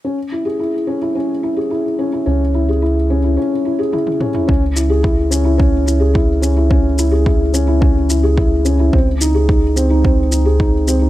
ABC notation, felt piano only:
X:1
M:4/4
L:1/16
Q:1/4=108
K:C#m
V:1 name="Felt piano"
C z E G E z C E C z E G E z C E | C z E G E z C E C z E G E z C E | C z E G E z C E C z E G E z C E | C z E G E z C E C z E G E z C E |
^B, z D G D z B, D B, z D G D z B, D |]